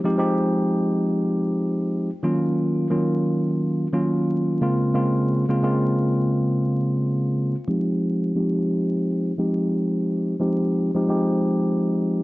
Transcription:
0.04 0.17 F3 loud
0.04 0.17 G#3 medium
0.04 0.17 C4 medium
0.04 0.18 D#4 medium
0.04 0.18 G4 loud
0.18 2.09 F3 medium
0.18 2.09 G#3 medium
0.18 2.09 C4 medium
0.18 2.09 D#4 medium
0.18 2.10 G4 loud
2.23 2.87 D#3 loud
2.23 2.87 F#3 medium
2.23 2.87 A#3 medium
2.23 2.87 C#4 medium
2.23 2.87 F4 loud
2.90 3.86 D#3 loud
2.90 3.86 F#3 medium
2.90 3.86 A#3 medium
2.90 3.87 C#4 medium
2.90 3.87 F4 loud
3.93 4.61 D#3 medium
3.93 4.61 F#3 medium
3.93 4.61 A#3 medium
3.93 4.62 C#4 medium
3.93 4.62 F4 loud
4.61 4.93 C#3 medium
4.61 4.93 G#3 medium
4.61 4.94 A#3 medium
4.61 4.94 C4 medium
4.61 4.94 F4 loud
4.94 5.44 C#3 medium
4.94 5.44 G#3 medium
4.94 5.44 A#3 medium
4.94 5.44 C4 medium
4.94 5.45 F4 loud
5.49 5.62 C#3 medium
5.49 5.62 G#3 medium
5.49 5.62 A#3 medium
5.49 5.63 C4 medium
5.49 5.63 F4 loud
5.63 7.54 C#3 medium
5.63 7.54 G#3 medium
5.63 7.54 A#3 medium
5.63 7.55 C4 medium
5.63 7.55 F4 loud
7.68 8.32 F3 loud
7.68 8.32 G#3 medium
7.68 8.32 C4 medium
7.68 8.32 D#4 medium
7.68 8.32 G4 loud
8.35 9.31 F3 medium
8.35 9.31 G#3 medium
8.35 9.32 C4 medium
8.35 9.32 D#4 medium
8.35 9.32 G4 loud
9.38 10.34 F3 medium
9.38 10.34 G#3 medium
9.38 10.34 C4 medium
9.38 10.34 D#4 medium
9.38 10.34 G4 medium
10.40 10.89 F3 medium
10.40 10.90 G#3 medium
10.40 10.90 C4 medium
10.40 10.90 D#4 medium
10.40 10.90 G4 loud
10.95 11.07 F3 medium
10.95 11.08 G#3 medium
10.95 11.08 C4 medium
10.95 11.08 D#4 medium
10.95 11.09 G4 loud
11.08 12.23 F3 medium
11.08 12.23 G#3 medium
11.08 12.23 C4 medium
11.08 12.23 D#4 medium
11.08 12.23 G4 loud

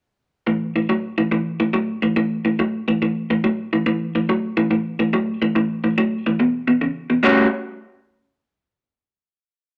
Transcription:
0.47 0.73 A2 medium
0.47 0.73 E3 medium
0.76 0.88 A2 medium
0.76 0.88 E3 medium
0.89 1.15 A2 medium
0.89 1.15 F#3 medium
1.18 1.30 A2 medium
1.18 1.30 E3 medium
1.31 1.57 A2 medium
1.31 1.58 E3 medium
1.60 1.72 A2 medium
1.60 1.73 E3 medium
1.73 2.00 A2 medium
1.73 2.00 F#3 medium
2.02 2.15 A2 medium
2.02 2.15 E3 medium
2.16 2.42 A2 medium
2.16 2.43 E3 medium
2.45 2.57 A2 medium
2.45 2.58 E3 medium
2.59 2.85 A2 medium
2.59 2.85 F#3 medium
2.88 3.00 A2 medium
2.88 3.01 E3 medium
3.02 3.28 A2 medium
3.02 3.28 E3 medium
3.30 3.43 A2 medium
3.30 3.43 E3 medium
3.44 3.70 A2 medium
3.44 3.70 F#3 medium
3.73 3.85 A2 medium
3.73 3.85 E3 medium
3.86 4.12 A2 medium
3.86 4.12 E3 medium
4.15 4.27 A2 medium
4.15 4.28 E3 medium
4.29 4.55 A2 medium
4.29 4.55 F#3 medium
4.57 4.70 A2 medium
4.57 4.70 E3 medium
4.71 4.97 A2 medium
4.71 4.97 E3 medium
4.99 5.12 A2 medium
4.99 5.12 E3 medium
5.13 5.39 A2 medium
5.13 5.39 F#3 medium
5.42 5.54 A2 medium
5.42 5.54 E3 medium
5.55 5.81 A2 medium
5.55 5.81 E3 medium
5.84 5.96 A2 medium
5.84 5.96 E3 medium
5.98 6.23 A2 medium
5.98 6.24 F#3 medium
6.26 6.39 A2 medium
6.26 6.39 E3 medium
6.40 6.65 E2 medium
6.40 6.66 B2 medium
6.68 6.80 E2 medium
6.68 6.80 B2 medium
6.81 7.07 E2 medium
6.81 7.07 C#3 medium
7.10 7.22 E2 medium
7.10 7.22 B2 medium
7.23 7.46 A2 medium
7.23 7.46 G3 medium
7.23 7.47 C#4 medium
7.23 7.47 F#4 medium

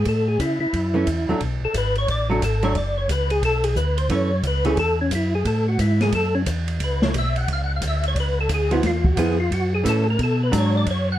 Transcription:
0.05 0.38 A2 medium
0.05 0.28 A4 medium
0.05 kick soft
0.05 ride medium
0.28 0.40 G#4 medium
0.39 0.59 C#3 medium
0.39 0.59 E4 medium
0.39 kick soft
0.39 hi-hat pedal medium
0.39 ride medium
0.60 0.67 C#3 soft
0.60 1.37 E4 medium
0.73 1.06 F#2 medium
0.73 kick soft
0.73 ride medium
0.94 1.05 E3 medium
0.94 1.06 A3 medium
0.94 1.06 C#4 medium
1.07 1.27 E2 medium
1.07 kick soft
1.07 hi-hat pedal medium
1.07 ride medium
1.29 1.35 E2 soft
1.29 1.40 F#3 medium
1.29 1.40 A3 medium
1.29 1.41 D4 medium
1.40 1.60 B1 medium
1.40 kick soft
1.40 ride medium
1.61 1.68 B1 soft
1.61 1.75 A4 medium
1.74 2.07 G#1 medium
1.74 1.97 B4 medium
1.74 kick soft
1.74 hi-hat pedal medium
1.74 ride medium
1.95 2.09 C#5 medium
1.95 ride soft
2.08 2.41 A1 medium
2.08 2.30 D5 loud
2.08 kick soft
2.08 ride medium
2.30 2.41 F#3 medium
2.30 2.42 A3 medium
2.30 2.42 D4 medium
2.30 2.42 F#4 medium
2.42 2.74 G#1 medium
2.42 2.64 A4 medium
2.42 kick soft
2.42 hi-hat pedal medium
2.42 ride medium
2.63 2.74 F#3 medium
2.63 2.75 A3 medium
2.63 2.75 D4 medium
2.63 2.76 C#5 loud
2.63 ride soft
2.75 3.08 F#1 medium
2.75 2.97 D5 medium
2.75 kick soft
2.75 ride medium
2.98 3.09 C#5 loud
3.09 3.42 C#2 medium
3.09 3.31 B4 medium
3.09 kick soft
3.09 hi-hat pedal medium
3.09 ride medium
3.30 3.43 G#4 medium
3.30 ride soft
3.42 3.75 B1 medium
3.42 3.65 A4 loud
3.42 kick soft
3.42 ride medium
3.64 3.76 G#4 medium
3.64 ride medium
3.76 4.09 D2 loud
3.76 3.97 B4 medium
3.76 kick soft
3.76 hi-hat pedal medium
3.97 4.10 C5 loud
3.97 ride soft
4.09 4.43 F#2 medium
4.09 4.30 E3 medium
4.09 4.30 A3 medium
4.09 4.30 C#4 medium
4.09 4.43 C#5 loud
4.09 kick soft
4.09 ride medium
4.43 4.77 C#2 loud
4.43 4.66 B4 medium
4.43 kick soft
4.43 hi-hat pedal medium
4.43 ride medium
4.65 4.76 E3 medium
4.65 4.77 A3 medium
4.65 4.77 C#4 medium
4.65 4.78 G#4 loud
4.65 ride soft
4.77 5.10 E2 medium
4.77 4.99 A4 loud
4.77 kick soft
4.77 ride medium
5.01 5.12 C#4 medium
5.11 5.44 F#2 medium
5.11 kick soft
5.11 hi-hat pedal medium
5.11 ride medium
5.15 5.34 E4 medium
5.35 5.46 G#4 loud
5.45 5.78 A2 medium
5.45 5.67 A4 medium
5.45 kick soft
5.45 ride medium
5.68 5.80 F#4 medium
5.79 6.12 G#2 medium
5.79 6.01 E4 medium
5.79 kick soft
5.79 hi-hat pedal soft
5.79 ride medium
6.01 6.13 G#4 loud
6.01 snare soft
6.01 ride soft
6.12 6.46 F#2 medium
6.12 6.35 A4 medium
6.12 kick soft
6.12 ride medium
6.35 6.42 C#4 medium
6.46 6.80 E2 medium
6.46 kick soft
6.46 hi-hat pedal medium
6.46 ride medium
6.68 ride soft
6.80 7.13 C#2 medium
6.80 7.03 B4 medium
6.80 kick soft
6.80 ride medium
7.02 7.14 C#5 medium
7.02 snare medium
7.14 7.47 B1 medium
7.14 kick soft
7.14 hi-hat pedal soft
7.14 ride medium
7.18 7.37 E5 medium
7.36 7.49 F#5 loud
7.36 ride soft
7.48 7.81 C#2 medium
7.48 kick soft
7.48 ride medium
7.53 7.62 F5 medium
7.64 7.73 F#5 medium
7.76 7.85 F5 medium
7.81 8.15 D2 medium
7.81 kick soft
7.81 hi-hat pedal medium
7.81 ride medium
7.87 8.06 E5 medium
8.03 ride soft
8.08 8.18 C#5 loud
8.15 8.48 C#2 medium
8.15 kick soft
8.15 ride medium
8.20 8.39 B4 medium
8.41 8.51 A4 medium
8.49 8.82 D2 medium
8.49 kick soft
8.49 hi-hat pedal medium
8.49 ride medium
8.54 8.73 G#4 medium
8.71 8.82 F3 medium
8.71 8.83 B3 medium
8.71 8.83 E4 medium
8.71 8.84 F#4 loud
8.71 ride soft
8.83 9.16 E2 medium
8.83 9.06 F4 medium
8.83 kick soft
8.83 snare soft
8.83 ride medium
9.04 9.17 F#4 medium
9.04 kick medium
9.17 9.50 F2 loud
9.17 9.37 F3 medium
9.17 9.37 B3 medium
9.17 9.37 E4 medium
9.17 9.39 G#4 medium
9.17 kick soft
9.17 hi-hat pedal medium
9.17 ride medium
9.40 9.51 F4 loud
9.51 9.84 F#2 medium
9.51 9.73 F#4 medium
9.51 kick soft
9.51 ride medium
9.74 9.86 G#4 loud
9.84 10.18 A2 medium
9.84 10.04 E3 medium
9.84 10.04 A3 medium
9.84 10.04 C#4 medium
9.84 kick soft
9.84 hi-hat pedal medium
9.84 ride medium
9.89 10.08 A4 medium
10.10 10.21 A#4 loud
10.19 10.52 B2 medium
10.19 kick soft
10.19 ride medium
10.23 10.42 A4 medium
10.43 10.54 B4 medium
10.52 10.86 G#2 medium
10.52 10.86 F#3 medium
10.52 10.86 D4 medium
10.52 kick soft
10.52 hi-hat pedal medium
10.52 ride medium
10.58 10.76 C#5 medium
10.77 10.88 D5 loud
10.86 11.19 F#2 medium
10.86 11.09 C#5 medium
10.86 kick soft
10.86 ride medium
11.12 11.18 F#5 loud

